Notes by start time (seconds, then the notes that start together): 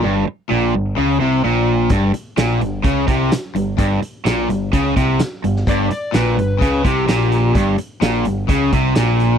0.02 G1 G2
0.26 muted overdriven electric guitar stroke, muted picked electric bass stroke
0.49 A#1 A#2
0.74 G1 G2
0.96 C#2 C#3
1.21 C2 C3
1.44 A#1 A#2
1.90 G1 G2, kick, closed hi-hat
2.14 muted picked electric bass stroke, muted overdriven electric guitar stroke, closed hi-hat
2.37 A#1 A#2, snare, closed hi-hat, tambourine
2.60 G1 G2, closed hi-hat
2.83 C#2 C#3, kick, closed hi-hat
3.08 C2 C3, kick, closed hi-hat
3.32 muted overdriven electric guitar stroke, muted picked electric bass stroke, snare, closed hi-hat, tambourine
3.55 G1 G2, closed hi-hat
3.77 G1 G2, kick, closed hi-hat
4.01 muted overdriven electric guitar stroke, muted picked electric bass stroke, closed hi-hat
4.25 A#1 A#2, snare, closed hi-hat, tambourine
4.49 G1 G2, closed hi-hat
4.73 C#2 C#3, kick, closed hi-hat
4.96 C2 C3, kick, closed hi-hat
5.19 muted picked electric bass stroke, muted overdriven electric guitar stroke, snare, closed hi-hat, tambourine
5.44 G1 G2, closed hi-hat
5.56 snare
5.67 G1 G2 D5, kick, closed hi-hat
5.91 D5, muted overdriven electric guitar stroke, muted picked electric bass stroke, closed hi-hat
6.12 A#1 A#2 B4, snare, closed hi-hat, tambourine
6.36 G1 G2, closed hi-hat
6.59 C#2 C#3, kick, closed hi-hat
6.84 C2 C3 G4, kick, closed hi-hat
7.07 A#1 A#2, snare, closed hi-hat, tambourine
7.32 closed hi-hat
7.55 G1 G2, kick, closed hi-hat
7.78 muted overdriven electric guitar stroke, muted picked electric bass stroke, closed hi-hat
8.01 A#1 A#2, snare, closed hi-hat, tambourine
8.25 G1 G2, closed hi-hat
8.48 C#2 C#3, kick, closed hi-hat
8.73 C2 C3, kick, closed hi-hat
8.95 A#1 A#2, snare, closed hi-hat, tambourine
9.20 closed hi-hat